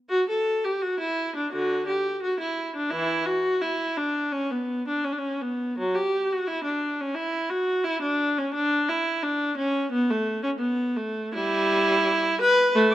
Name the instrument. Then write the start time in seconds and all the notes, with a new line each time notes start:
viola
0.10 F#4
0.29 A4
0.64 G4
0.82 F#4
0.99 E4
1.36 D4
1.52 D3 F#4
1.87 G4
2.22 F#4
2.39 E4
2.76 D4
2.91 E3 E4
3.26 F#4
3.61 E4
3.97 D4
4.32 C#4
4.51 B3
4.88 D4
5.04 C#4
5.12 D4
5.18 C#4
5.41 B3
5.78 F#3
5.95 G4
6.32 F#4
6.47 E4
6.64 D4
7.01 C#4
7.15 E4
7.49 F#4
7.84 E4
8.02 D4
8.38 C#4
8.54 D4
8.89 E4
9.23 D4
9.57 C#4
9.92 B3
10.10 A3
10.43 C#4
10.59 B3
10.96 A3
11.34 G3 E4
12.41 B4
12.75 A3
12.91 D5